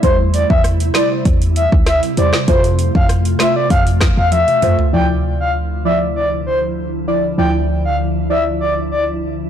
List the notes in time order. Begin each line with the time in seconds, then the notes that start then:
Already playing: E4
0.03 E2 C3 G3 E4 C5, kick, closed hi-hat
0.34 D5, closed hi-hat
0.50 E2 E5, kick
0.64 cross-stick, closed hi-hat
0.80 closed hi-hat
0.94 G3 E4 C5 D5, cross-stick, snare, closed hi-hat
1.25 E2, kick, closed hi-hat
1.42 closed hi-hat
1.56 E5, closed hi-hat
1.72 D2, kick
1.86 E5, cross-stick, snare, closed hi-hat
2.03 closed hi-hat
2.17 E2 G3 E4 C5 D5, closed hi-hat
2.33 cross-stick, snare
2.48 F2 A3 F4 C5, kick, closed hi-hat
2.64 closed hi-hat
2.79 closed hi-hat
2.95 F2 F5, kick
3.09 cross-stick, closed hi-hat
3.25 closed hi-hat
3.39 A3 F4 C5 E5, cross-stick, snare, closed hi-hat
3.56 D5
3.70 F2 F5, kick, closed hi-hat
3.87 closed hi-hat
4.01 kick, cross-stick, snare, closed hi-hat
4.17 E2 F5
4.32 E5, closed hi-hat, high tom
4.48 closed hi-hat, mid tom
4.62 F2 A3 F4 C5, closed hi-hat, mid tom
4.79 floor tom
4.93 D2 D3 F3 E4 D5 G5
5.40 F5
5.85 F3 E4 D5 E5
6.16 D5
6.46 C5
7.07 F3 E4 D5
7.38 D2 F3 E4 D5 G5
7.85 F5
8.29 F3 E4 D5 E5
8.60 D5
8.91 D5